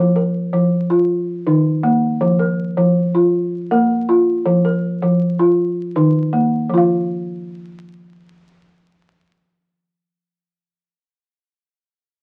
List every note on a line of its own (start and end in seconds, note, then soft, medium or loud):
0.00 0.34 F3 medium
0.16 0.72 A#4 medium
0.53 0.90 F3 medium
0.90 1.09 F4 medium
1.47 1.84 D#3 medium
1.47 2.02 D#4 medium
1.83 2.21 A#3 medium
2.21 2.58 F3 medium
2.39 2.96 A#4 medium
2.77 3.15 F3 medium
3.15 3.33 F4 medium
3.71 4.08 A#3 medium
3.71 4.27 A#4 medium
4.09 4.46 F4 medium
4.46 4.83 F3 medium
4.65 5.21 A#4 medium
5.02 5.39 F3 medium
5.39 5.58 F4 medium
5.96 6.33 D#3 medium
5.96 6.52 D#4 medium
6.33 6.70 A#3 medium
6.70 9.88 F3 medium
6.74 9.92 F4 medium
6.74 9.96 F5 medium